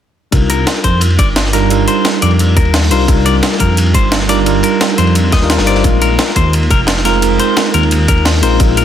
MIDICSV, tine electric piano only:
0, 0, Header, 1, 2, 480
1, 0, Start_track
1, 0, Key_signature, -3, "minor"
1, 0, Tempo, 344828
1, 454, Time_signature, 4, 2, 24, 8
1, 12316, End_track
2, 0, Start_track
2, 0, Title_t, "Tine electric piano"
2, 0, Program_c, 0, 4
2, 436, Note_on_c, 0, 55, 73
2, 446, Note_on_c, 0, 62, 66
2, 454, Note_on_c, 0, 63, 66
2, 465, Note_on_c, 0, 65, 65
2, 475, Note_on_c, 0, 70, 81
2, 696, Control_c, 0, 64, 127
2, 2097, Note_off_c, 0, 55, 0
2, 2102, Note_off_c, 0, 62, 0
2, 2106, Note_off_c, 0, 63, 0
2, 2112, Note_off_c, 0, 65, 0
2, 2116, Note_off_c, 0, 70, 0
2, 2126, Note_on_c, 0, 55, 87
2, 2130, Note_on_c, 0, 62, 81
2, 2136, Note_on_c, 0, 63, 78
2, 2141, Note_on_c, 0, 65, 81
2, 2146, Note_on_c, 0, 70, 97
2, 2342, Note_off_c, 0, 55, 0
2, 2344, Note_off_c, 0, 62, 0
2, 2347, Note_off_c, 0, 63, 0
2, 2349, Note_off_c, 0, 65, 0
2, 2352, Note_off_c, 0, 70, 0
2, 2359, Note_on_c, 0, 55, 73
2, 2367, Note_on_c, 0, 62, 65
2, 2376, Note_on_c, 0, 63, 67
2, 2388, Note_on_c, 0, 65, 66
2, 2396, Note_on_c, 0, 70, 80
2, 4018, Note_off_c, 0, 55, 0
2, 4022, Note_off_c, 0, 62, 0
2, 4027, Note_off_c, 0, 63, 0
2, 4033, Note_off_c, 0, 65, 0
2, 4037, Note_off_c, 0, 70, 0
2, 4043, Note_on_c, 0, 55, 88
2, 4049, Note_on_c, 0, 62, 79
2, 4054, Note_on_c, 0, 63, 83
2, 4060, Note_on_c, 0, 65, 80
2, 4063, Note_on_c, 0, 70, 95
2, 4260, Note_off_c, 0, 55, 0
2, 4263, Note_off_c, 0, 62, 0
2, 4266, Note_off_c, 0, 63, 0
2, 4269, Note_off_c, 0, 65, 0
2, 4270, Note_off_c, 0, 70, 0
2, 4274, Note_on_c, 0, 55, 74
2, 4286, Note_on_c, 0, 62, 67
2, 4294, Note_on_c, 0, 63, 67
2, 4304, Note_on_c, 0, 65, 65
2, 4314, Note_on_c, 0, 70, 81
2, 5936, Note_off_c, 0, 55, 0
2, 5942, Note_off_c, 0, 62, 0
2, 5946, Note_off_c, 0, 63, 0
2, 5951, Note_off_c, 0, 65, 0
2, 5956, Note_off_c, 0, 70, 0
2, 5965, Note_on_c, 0, 55, 91
2, 5969, Note_on_c, 0, 62, 81
2, 5974, Note_on_c, 0, 63, 79
2, 5980, Note_on_c, 0, 65, 84
2, 5986, Note_on_c, 0, 70, 99
2, 6182, Note_off_c, 0, 55, 0
2, 6183, Note_off_c, 0, 62, 0
2, 6186, Note_off_c, 0, 63, 0
2, 6189, Note_off_c, 0, 65, 0
2, 6192, Note_off_c, 0, 70, 0
2, 6197, Note_on_c, 0, 55, 75
2, 6206, Note_on_c, 0, 62, 67
2, 6217, Note_on_c, 0, 63, 66
2, 6226, Note_on_c, 0, 65, 68
2, 6236, Note_on_c, 0, 70, 80
2, 7504, Note_off_c, 0, 55, 0
2, 7509, Note_off_c, 0, 62, 0
2, 7514, Note_off_c, 0, 63, 0
2, 7519, Note_off_c, 0, 65, 0
2, 7524, Note_off_c, 0, 70, 0
2, 7531, Note_on_c, 0, 55, 85
2, 7536, Note_on_c, 0, 62, 76
2, 7541, Note_on_c, 0, 63, 78
2, 7545, Note_on_c, 0, 65, 76
2, 7551, Note_on_c, 0, 70, 94
2, 7863, Note_off_c, 0, 55, 0
2, 7865, Note_off_c, 0, 62, 0
2, 7868, Note_off_c, 0, 63, 0
2, 7870, Note_off_c, 0, 65, 0
2, 7873, Note_off_c, 0, 70, 0
2, 7884, Note_on_c, 0, 55, 87
2, 7888, Note_on_c, 0, 62, 78
2, 7894, Note_on_c, 0, 63, 78
2, 7898, Note_on_c, 0, 65, 81
2, 7903, Note_on_c, 0, 72, 92
2, 8101, Note_off_c, 0, 55, 0
2, 8103, Note_off_c, 0, 62, 0
2, 8106, Note_off_c, 0, 63, 0
2, 8108, Note_off_c, 0, 65, 0
2, 8110, Note_off_c, 0, 72, 0
2, 8115, Note_on_c, 0, 56, 72
2, 8124, Note_on_c, 0, 60, 67
2, 8134, Note_on_c, 0, 63, 66
2, 8146, Note_on_c, 0, 65, 67
2, 8149, Control_c, 0, 64, 0
2, 8154, Note_on_c, 0, 70, 79
2, 8384, Control_c, 0, 64, 127
2, 9776, Note_off_c, 0, 56, 0
2, 9781, Note_off_c, 0, 60, 0
2, 9786, Note_off_c, 0, 63, 0
2, 9792, Note_off_c, 0, 65, 0
2, 9796, Note_off_c, 0, 70, 0
2, 9805, Note_on_c, 0, 56, 90
2, 9809, Note_on_c, 0, 60, 80
2, 9813, Note_on_c, 0, 63, 79
2, 9818, Note_on_c, 0, 65, 83
2, 9825, Note_on_c, 0, 70, 96
2, 10018, Note_off_c, 0, 56, 0
2, 10023, Note_off_c, 0, 60, 0
2, 10025, Note_off_c, 0, 63, 0
2, 10028, Note_off_c, 0, 65, 0
2, 10031, Note_off_c, 0, 70, 0
2, 10035, Note_on_c, 0, 56, 74
2, 10044, Note_on_c, 0, 60, 69
2, 10055, Note_on_c, 0, 63, 69
2, 10064, Note_on_c, 0, 65, 70
2, 10075, Note_on_c, 0, 70, 82
2, 11696, Note_off_c, 0, 56, 0
2, 11701, Note_off_c, 0, 60, 0
2, 11706, Note_off_c, 0, 63, 0
2, 11711, Note_off_c, 0, 65, 0
2, 11717, Note_off_c, 0, 70, 0
2, 11719, Note_on_c, 0, 56, 89
2, 11724, Note_on_c, 0, 60, 82
2, 11729, Note_on_c, 0, 63, 84
2, 11732, Note_on_c, 0, 65, 81
2, 11737, Note_on_c, 0, 70, 98
2, 11934, Note_off_c, 0, 56, 0
2, 11941, Note_off_c, 0, 60, 0
2, 11943, Note_off_c, 0, 63, 0
2, 11945, Note_off_c, 0, 65, 0
2, 11947, Note_off_c, 0, 70, 0
2, 11951, Note_on_c, 0, 56, 75
2, 11962, Note_on_c, 0, 60, 69
2, 11971, Note_on_c, 0, 63, 71
2, 11981, Note_on_c, 0, 65, 70
2, 11990, Note_on_c, 0, 70, 82
2, 12316, Note_off_c, 0, 56, 0
2, 12316, Note_off_c, 0, 60, 0
2, 12316, Note_off_c, 0, 63, 0
2, 12316, Note_off_c, 0, 65, 0
2, 12316, Note_off_c, 0, 70, 0
2, 12316, End_track
0, 0, End_of_file